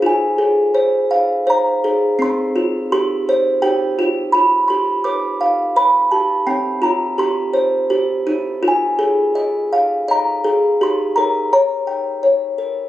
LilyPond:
\new Staff \with { instrumentName = "Music box" } { \time 3/4 \key f \minor \tempo 4 = 84 << { aes''2 bes''4 | c'''4 c'''4 g''8. r16 | b''8 c'''8 d'''4 b''8 a''8 | g''8 bes''8 c'''4. r8 |
aes''2 bes''4 | c'''8 bes''8 bes''4. r8 | } \\ { f'8 aes'8 c''8 f''8 c''8 aes'8 | c'8 f'8 g'8 c''8 g'8 f'8 | f'8 g'8 b'8 f''8 b'8 g'8 | c'8 f'8 g'8 c''8 g'8 e'8 |
f'8 aes'8 ees''8 f''8 ees''8 aes'8 | g'8 bes'8 des''8 g''8 des''8 bes'8 | } >> }